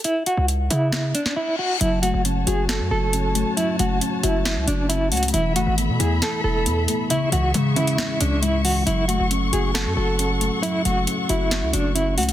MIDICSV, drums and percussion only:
0, 0, Header, 1, 2, 480
1, 0, Start_track
1, 0, Key_signature, 3, "minor"
1, 0, Tempo, 441176
1, 48, Time_signature, 4, 2, 24, 8
1, 13412, End_track
2, 0, Start_track
2, 0, Title_t, "Drums"
2, 47, Note_on_c, 9, 42, 85
2, 156, Note_off_c, 9, 42, 0
2, 287, Note_on_c, 9, 42, 73
2, 396, Note_off_c, 9, 42, 0
2, 527, Note_on_c, 9, 42, 74
2, 636, Note_off_c, 9, 42, 0
2, 767, Note_on_c, 9, 42, 67
2, 876, Note_off_c, 9, 42, 0
2, 1006, Note_on_c, 9, 38, 116
2, 1007, Note_on_c, 9, 42, 69
2, 1115, Note_off_c, 9, 38, 0
2, 1116, Note_off_c, 9, 42, 0
2, 1247, Note_on_c, 9, 42, 89
2, 1356, Note_off_c, 9, 42, 0
2, 1368, Note_on_c, 9, 38, 75
2, 1477, Note_off_c, 9, 38, 0
2, 1967, Note_on_c, 9, 42, 91
2, 2076, Note_off_c, 9, 42, 0
2, 2207, Note_on_c, 9, 42, 75
2, 2316, Note_off_c, 9, 42, 0
2, 2448, Note_on_c, 9, 42, 73
2, 2556, Note_off_c, 9, 42, 0
2, 2688, Note_on_c, 9, 42, 78
2, 2796, Note_off_c, 9, 42, 0
2, 2927, Note_on_c, 9, 38, 121
2, 2927, Note_on_c, 9, 42, 68
2, 3036, Note_off_c, 9, 38, 0
2, 3036, Note_off_c, 9, 42, 0
2, 3407, Note_on_c, 9, 42, 91
2, 3516, Note_off_c, 9, 42, 0
2, 3647, Note_on_c, 9, 42, 85
2, 3756, Note_off_c, 9, 42, 0
2, 3887, Note_on_c, 9, 42, 94
2, 3996, Note_off_c, 9, 42, 0
2, 4127, Note_on_c, 9, 42, 79
2, 4236, Note_off_c, 9, 42, 0
2, 4367, Note_on_c, 9, 42, 76
2, 4476, Note_off_c, 9, 42, 0
2, 4607, Note_on_c, 9, 42, 74
2, 4716, Note_off_c, 9, 42, 0
2, 4846, Note_on_c, 9, 38, 119
2, 4847, Note_on_c, 9, 42, 70
2, 4955, Note_off_c, 9, 38, 0
2, 4956, Note_off_c, 9, 42, 0
2, 5087, Note_on_c, 9, 42, 99
2, 5196, Note_off_c, 9, 42, 0
2, 5327, Note_on_c, 9, 42, 92
2, 5436, Note_off_c, 9, 42, 0
2, 5567, Note_on_c, 9, 42, 53
2, 5567, Note_on_c, 9, 46, 90
2, 5627, Note_off_c, 9, 42, 0
2, 5627, Note_on_c, 9, 42, 66
2, 5676, Note_off_c, 9, 46, 0
2, 5687, Note_off_c, 9, 42, 0
2, 5687, Note_on_c, 9, 42, 76
2, 5747, Note_off_c, 9, 42, 0
2, 5747, Note_on_c, 9, 42, 89
2, 5808, Note_off_c, 9, 42, 0
2, 5808, Note_on_c, 9, 42, 91
2, 5916, Note_off_c, 9, 42, 0
2, 6047, Note_on_c, 9, 42, 76
2, 6156, Note_off_c, 9, 42, 0
2, 6287, Note_on_c, 9, 42, 75
2, 6396, Note_off_c, 9, 42, 0
2, 6528, Note_on_c, 9, 42, 80
2, 6636, Note_off_c, 9, 42, 0
2, 6767, Note_on_c, 9, 38, 121
2, 6767, Note_on_c, 9, 42, 72
2, 6876, Note_off_c, 9, 38, 0
2, 6876, Note_off_c, 9, 42, 0
2, 7247, Note_on_c, 9, 42, 93
2, 7356, Note_off_c, 9, 42, 0
2, 7487, Note_on_c, 9, 42, 85
2, 7596, Note_off_c, 9, 42, 0
2, 7727, Note_on_c, 9, 42, 93
2, 7836, Note_off_c, 9, 42, 0
2, 7967, Note_on_c, 9, 42, 79
2, 8076, Note_off_c, 9, 42, 0
2, 8207, Note_on_c, 9, 42, 74
2, 8316, Note_off_c, 9, 42, 0
2, 8447, Note_on_c, 9, 42, 61
2, 8556, Note_off_c, 9, 42, 0
2, 8567, Note_on_c, 9, 42, 62
2, 8676, Note_off_c, 9, 42, 0
2, 8687, Note_on_c, 9, 38, 120
2, 8687, Note_on_c, 9, 42, 68
2, 8796, Note_off_c, 9, 38, 0
2, 8796, Note_off_c, 9, 42, 0
2, 8927, Note_on_c, 9, 42, 98
2, 9036, Note_off_c, 9, 42, 0
2, 9167, Note_on_c, 9, 42, 89
2, 9276, Note_off_c, 9, 42, 0
2, 9408, Note_on_c, 9, 46, 91
2, 9516, Note_off_c, 9, 46, 0
2, 9647, Note_on_c, 9, 42, 89
2, 9756, Note_off_c, 9, 42, 0
2, 9888, Note_on_c, 9, 42, 79
2, 9996, Note_off_c, 9, 42, 0
2, 10128, Note_on_c, 9, 42, 75
2, 10236, Note_off_c, 9, 42, 0
2, 10368, Note_on_c, 9, 42, 78
2, 10476, Note_off_c, 9, 42, 0
2, 10607, Note_on_c, 9, 38, 124
2, 10608, Note_on_c, 9, 42, 70
2, 10716, Note_off_c, 9, 38, 0
2, 10716, Note_off_c, 9, 42, 0
2, 11088, Note_on_c, 9, 42, 89
2, 11197, Note_off_c, 9, 42, 0
2, 11327, Note_on_c, 9, 42, 85
2, 11436, Note_off_c, 9, 42, 0
2, 11568, Note_on_c, 9, 42, 91
2, 11676, Note_off_c, 9, 42, 0
2, 11807, Note_on_c, 9, 42, 80
2, 11916, Note_off_c, 9, 42, 0
2, 12047, Note_on_c, 9, 42, 78
2, 12156, Note_off_c, 9, 42, 0
2, 12287, Note_on_c, 9, 42, 72
2, 12396, Note_off_c, 9, 42, 0
2, 12526, Note_on_c, 9, 38, 117
2, 12527, Note_on_c, 9, 42, 71
2, 12635, Note_off_c, 9, 38, 0
2, 12636, Note_off_c, 9, 42, 0
2, 12767, Note_on_c, 9, 42, 95
2, 12876, Note_off_c, 9, 42, 0
2, 13007, Note_on_c, 9, 42, 90
2, 13116, Note_off_c, 9, 42, 0
2, 13248, Note_on_c, 9, 42, 52
2, 13248, Note_on_c, 9, 46, 92
2, 13307, Note_off_c, 9, 42, 0
2, 13307, Note_on_c, 9, 42, 63
2, 13356, Note_off_c, 9, 46, 0
2, 13368, Note_off_c, 9, 42, 0
2, 13368, Note_on_c, 9, 42, 76
2, 13412, Note_off_c, 9, 42, 0
2, 13412, End_track
0, 0, End_of_file